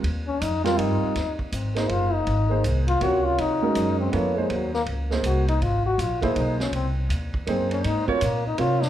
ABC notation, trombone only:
X:1
M:3/4
L:1/8
Q:"Swing" 1/4=162
K:Eblyd
V:1 name="Trombone"
z _D E F E2- | [K:Abmix] E z C E F E- | E2 z F G F | E3 C B, A, |
G, B, z2 G E | F G F _F E D | C z3 C D | E G, B, E F =D |]